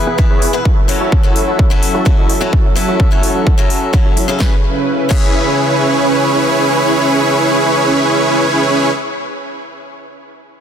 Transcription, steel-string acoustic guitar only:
0.00 0.15 E3 medium
0.00 0.16 B3 medium
0.00 0.16 E4 medium
0.00 0.16 G#4 medium
0.00 0.16 B4 loud
0.18 0.51 E3 medium
0.18 0.51 B3 medium
0.18 0.51 E4 medium
0.18 0.51 G#4 medium
0.18 0.51 B4 medium
0.53 0.64 B3 medium
0.53 0.64 E4 medium
0.53 0.64 G#4 medium
0.53 0.64 B4 loud
0.88 1.21 F#3 medium
0.88 1.21 C#4 medium
0.88 1.21 E4 medium
0.88 1.21 F#4 medium
0.88 1.21 A4 medium
1.23 1.68 F#3 medium
1.23 1.68 C#4 medium
1.23 1.68 E4 medium
1.23 1.68 F#4 medium
1.23 1.68 A4 medium
1.70 2.03 F#3 medium
1.70 2.03 C#4 medium
1.70 2.03 E4 medium
1.70 2.03 F#4 medium
1.70 2.03 A4 medium
2.05 2.38 F#3 medium
2.05 2.38 C#4 medium
2.05 2.38 E4 medium
2.05 2.38 F#4 medium
2.05 2.39 A4 medium
2.41 2.52 F#3 medium
2.41 2.52 C#4 medium
2.41 2.52 E4 medium
2.41 2.52 F#4 medium
2.41 2.53 A4 loud
2.76 3.08 F#3 medium
2.76 3.09 C#4 medium
2.76 3.09 E4 medium
2.76 3.09 F#4 medium
2.76 3.09 A4 loud
3.11 3.55 F#3 medium
3.11 3.55 C#4 medium
3.11 3.56 E4 medium
3.11 3.56 F#4 medium
3.11 3.56 A4 medium
3.58 3.90 F#3 medium
3.58 3.91 C#4 medium
3.58 3.91 E4 medium
3.58 3.91 F#4 medium
3.58 3.91 A4 loud
3.93 4.26 F#3 medium
3.93 4.26 C#4 medium
3.93 4.26 E4 medium
3.93 4.26 F#4 medium
3.93 4.26 A4 medium
4.28 4.39 C#3 medium
4.28 4.37 C#4 medium
4.28 4.39 E4 medium
4.28 4.39 F#4 medium
4.28 4.39 A4 loud
4.39 4.52 C#4 medium
4.39 4.53 E4 medium
4.39 4.54 G#4 medium
4.39 4.54 B4 medium
5.09 8.89 C#4 medium
5.09 8.90 E4 medium
5.09 8.91 G#4 medium
5.09 8.92 B4 medium

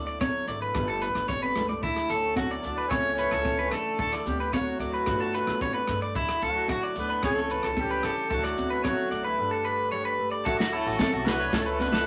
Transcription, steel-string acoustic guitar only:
0.00 0.72 D3 medium
0.00 0.49 A3 medium
0.00 0.72 E4 medium
0.00 0.76 F#4 medium
0.21 0.72 F#3 medium
0.49 0.76 A3 medium
0.75 1.80 G2 medium
0.75 1.29 G3 soft
0.75 1.57 A3 medium
0.75 1.81 D4 medium
0.75 1.03 A4 medium
1.03 2.11 A4 medium
1.30 1.80 G3 medium
1.58 2.65 A3 soft
1.84 2.88 D3 medium
1.84 2.89 E4 medium
2.11 2.92 F#4 medium
2.37 2.88 F#3 medium
2.65 2.93 A3 soft
2.92 3.46 C#3 medium
2.92 3.44 E3 soft
2.92 3.73 A3 medium
2.92 4.00 C#4 soft
2.92 3.18 A4 medium
3.19 4.28 A4 medium
3.45 4.53 E3 medium
3.73 4.82 A3 medium
4.00 5.04 D3 medium
4.00 5.05 E4 medium
4.28 5.08 F#4 medium
4.54 5.04 F#3 medium
4.82 5.09 A3 medium
5.08 6.12 G2 medium
5.08 5.61 G3 medium
5.08 5.90 A3 medium
5.08 5.36 D4 medium
5.37 6.13 D4 medium
5.62 6.12 G3 medium
5.90 6.18 A3 medium
6.17 7.21 D3 medium
6.17 6.68 F#3 medium
6.17 6.43 E4 soft
6.17 7.25 F#4 medium
6.17 muted steel-string acoustic guitar stroke medium
6.45 7.21 E4 soft
6.69 7.20 F#3 medium
6.97 7.24 A3 medium
7.23 7.77 C#3 medium
7.23 7.76 E3 medium
7.23 8.04 A3 medium
7.23 7.50 C#4 medium
7.51 8.31 C#4 medium
7.77 8.83 E3 medium
8.04 9.11 A3 medium
8.31 9.35 D3 medium
8.31 8.56 E4 medium
8.57 9.35 E4 medium
8.83 9.34 F#3 medium
9.12 9.39 A3 medium
9.38 10.43 G2 medium
9.38 9.90 G3 soft
9.38 10.18 A3 medium
9.38 10.44 D4 medium
9.38 9.65 A4 medium
9.66 10.43 A4 medium
9.92 10.42 G3 medium
10.19 10.46 A3 medium
10.47 11.50 D3 medium
10.47 11.53 A3 medium
10.73 11.50 E4 medium
10.99 11.50 F#3 medium
11.28 11.54 F#4 medium
11.53 12.06 C#3 medium
11.53 12.07 A3 medium
11.81 12.07 C#4 medium

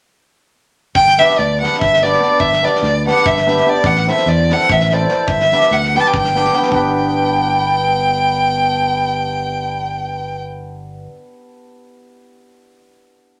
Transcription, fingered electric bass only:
0.95 1.21 G1 medium
1.39 1.65 D2 medium
1.82 2.17 G1 medium
2.40 2.66 G1 medium
2.83 3.09 D2 medium
3.25 3.60 G1 medium
3.84 4.10 A1 medium
4.26 4.52 E2 medium
4.70 5.05 A1 medium
5.28 5.54 G1 medium
5.71 5.97 D2 medium
6.14 6.49 G1 medium
6.72 11.06 G1 medium

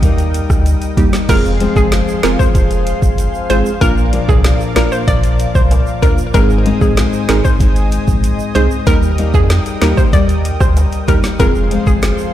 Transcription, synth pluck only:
1.29 1.41 A#4 loud
1.77 1.88 G#4 medium
2.24 2.35 A#4 medium
2.39 2.51 C5 medium
3.50 3.62 C5 medium
3.81 3.93 A#4 loud
4.29 4.41 G#4 medium
4.76 4.88 A#4 medium
4.92 5.04 C5 medium
5.08 5.20 D5 medium
5.55 5.67 C5 medium
6.02 6.14 A#4 medium
6.34 6.46 A#4 loud
6.81 6.93 G#4 medium
7.29 7.41 A#4 medium
7.45 7.56 C5 medium
8.55 8.67 C5 medium
8.87 8.99 A#4 loud
9.34 9.46 G#4 medium
9.82 9.94 A#4 medium
9.97 10.09 C5 medium
10.13 10.25 D5 medium
10.60 10.72 C5 medium
11.08 11.20 A#4 medium
11.40 11.51 A#4 loud
11.87 11.99 G#4 medium

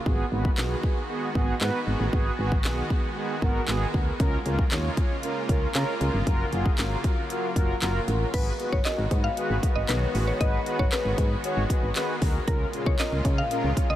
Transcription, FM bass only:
0.06 0.24 G#1 loud
0.32 0.49 G#1 loud
0.58 0.75 B1 medium
1.35 1.53 G#1 loud
1.61 1.70 G#2 loud
1.87 1.96 G#1 medium
2.00 2.09 A1 medium
2.13 2.30 G#1 loud
2.39 2.66 G#1 loud
2.65 2.82 B1 loud
3.42 3.60 G#1 medium
3.68 3.86 G#1 medium
3.94 4.12 D2 medium
4.20 4.37 C#2 loud
4.46 4.63 C#2 loud
4.72 4.89 D#2 loud
5.49 5.67 C#2 medium
5.75 5.84 C#3 loud
6.01 6.10 C#2 medium
6.14 6.23 G1 medium
6.27 6.44 F#1 loud
6.53 6.70 F#1 loud
6.79 6.96 G#1 medium
7.56 7.73 F#1 loud
7.82 7.99 F#1 loud
8.08 8.25 A1 loud
8.34 8.51 G#1 loud
8.73 8.81 G#1 medium
8.98 9.07 G#1 loud
9.11 9.29 G#2 loud
9.50 9.59 G#1 medium
9.76 9.85 G#1 medium
9.89 10.06 B1 loud
10.15 10.32 A1 medium
10.41 10.58 G#1 loud
10.79 10.88 G#1 medium
11.05 11.14 G#1 medium
11.18 11.35 G#2 loud
11.57 11.66 G#1 medium
11.83 11.92 G#1 medium
12.22 12.39 D2 medium
12.48 12.65 C#2 loud
12.86 12.95 C#2 loud
13.12 13.21 C#2 medium
13.25 13.42 C#3 loud
13.64 13.73 C#2 medium
13.90 13.96 C#2 medium

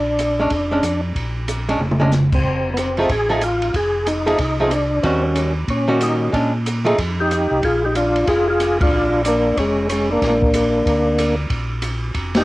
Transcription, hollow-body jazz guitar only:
0.40 0.50 G#3 soft
0.40 0.50 C#4 medium
0.40 0.51 D4 medium
0.71 0.82 G#3 soft
0.71 0.82 C#4 medium
0.71 0.83 D4 soft
1.69 1.79 G#3 medium
1.69 1.80 C#4 medium
1.69 1.80 D4 medium
2.00 2.11 G#3 medium
2.00 2.11 C#4 medium
2.00 2.12 D4 medium
2.98 3.08 F3 soft
2.98 3.09 A3 medium
2.98 3.09 D#4 medium
2.98 3.09 G#4 medium
3.29 3.40 F3 medium
3.29 3.41 A3 medium
3.29 3.41 D#4 medium
3.29 3.41 G#4 medium
4.26 4.37 F3 medium
4.26 4.37 A3 medium
4.26 4.38 D#4 medium
4.26 4.38 G#4 medium
4.60 4.70 F3 soft
4.60 4.70 A3 soft
4.60 4.71 D#4 medium
4.60 4.71 G#4 soft
5.03 5.52 D#3 medium
5.03 5.52 G3 medium
5.03 5.53 C#4 medium
5.03 5.53 F#4 medium
5.88 6.30 D#3 medium
5.88 6.31 G3 medium
5.88 6.31 C#4 medium
5.88 6.31 F#4 medium
6.32 6.51 G#3 soft
6.32 6.52 C#4 soft
6.32 6.52 D4 medium
6.85 6.96 F3 medium
6.85 6.96 A3 medium
6.85 6.97 D#4 medium
6.85 6.97 G#4 medium

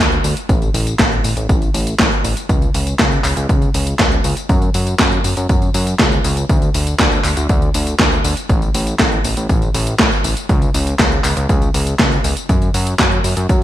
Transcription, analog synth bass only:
0.00 0.20 D2 medium
0.24 0.34 D2 medium
0.49 0.70 A1 loud
0.74 0.95 A1 loud
0.99 1.20 A1 medium
1.24 1.35 A1 medium
1.37 1.47 A1 medium
1.49 1.70 A1 medium
1.74 1.95 A1 medium
1.99 2.10 A1 medium
2.24 2.35 A1 medium
2.49 2.70 C#2 medium
2.74 2.95 C#2 medium
2.99 3.20 C#2 medium
3.24 3.35 C#2 medium
3.37 3.47 C#2 loud
3.49 3.70 C#2 loud
3.74 3.95 C#2 medium
3.99 4.20 C#2 medium
4.25 4.35 C#2 loud
4.49 4.70 F#2 loud
4.74 4.95 F#2 medium
4.99 5.20 F#2 medium
5.24 5.35 F#2 medium
5.37 5.47 F#2 medium
5.49 5.70 F#2 medium
5.74 5.95 F#2 medium
6.00 6.20 C#2 loud
6.24 6.45 C#2 loud
6.49 6.70 D2 medium
6.75 6.95 D2 medium
6.99 7.20 D2 medium
7.24 7.35 D2 medium
7.37 7.47 D2 loud
7.50 7.70 D2 loud
7.75 7.95 D2 medium
7.99 8.20 D2 medium
8.24 8.35 D2 medium
8.49 8.70 A1 medium
8.74 8.95 A1 loud
8.99 9.20 A1 medium
9.24 9.35 A1 medium
9.37 9.47 A1 medium
9.49 9.70 A1 medium
9.74 9.95 A1 medium
9.99 10.10 A1 medium
10.24 10.35 A1 medium
10.49 10.70 C#2 loud
10.74 10.95 C#2 medium
10.99 11.20 C#2 medium
11.24 11.35 C#2 medium
11.37 11.47 C#2 loud
11.49 11.70 C#2 loud
11.74 11.95 C#2 medium
11.99 12.20 C#2 medium
12.24 12.34 C#2 medium
12.49 12.70 F#2 loud
12.74 12.95 F#2 loud
12.99 13.20 F#2 medium
13.24 13.34 F#2 medium
13.37 13.47 F#2 medium
13.49 13.63 F#2 medium

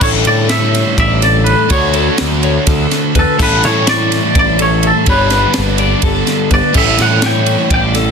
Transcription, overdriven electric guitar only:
0.00 1.69 A2 loud
0.00 1.69 E3 loud
0.00 1.69 G3 loud
0.00 1.70 C#4 loud
0.00 1.70 G4 loud
1.69 3.37 D3 loud
1.69 3.37 A3 medium
1.69 3.40 D4 loud
1.69 3.38 F#4 loud
3.39 5.06 A2 loud
3.39 5.07 E3 loud
3.39 5.07 G3 loud
3.39 5.07 C#4 loud
3.39 5.08 E4 loud
5.07 6.73 G2 medium
5.07 6.73 D3 medium
5.07 6.73 G3 loud
5.07 6.74 B3 loud
5.07 6.75 D4 loud
6.73 8.11 A2 medium
6.73 8.11 E3 loud
6.73 8.11 G3 loud
6.73 8.11 C#4 loud
6.73 8.11 E4 loud

